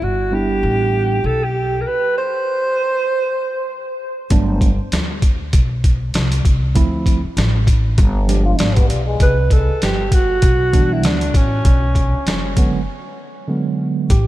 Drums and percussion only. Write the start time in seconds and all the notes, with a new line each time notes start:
4.30 kick, closed hi-hat
4.61 kick, closed hi-hat
4.92 snare, closed hi-hat
5.22 kick, closed hi-hat
5.53 kick, closed hi-hat
5.84 kick, closed hi-hat
6.14 snare, closed hi-hat
6.32 closed hi-hat
6.45 kick, closed hi-hat
6.76 kick, closed hi-hat
7.06 kick, closed hi-hat
7.37 snare, closed hi-hat
7.67 kick, closed hi-hat
7.98 kick, closed hi-hat
8.29 closed hi-hat
8.59 snare, closed hi-hat
8.76 kick, closed hi-hat
8.90 closed hi-hat
9.20 kick, closed hi-hat
9.50 kick, closed hi-hat
9.82 snare, closed hi-hat
10.12 kick, closed hi-hat
10.42 kick, closed hi-hat
10.73 kick, closed hi-hat
11.04 snare, closed hi-hat
11.21 closed hi-hat
11.34 kick, closed hi-hat
11.65 kick, closed hi-hat
11.95 kick, closed hi-hat
12.27 snare, closed hi-hat
12.57 kick, closed hi-hat
14.10 kick, closed hi-hat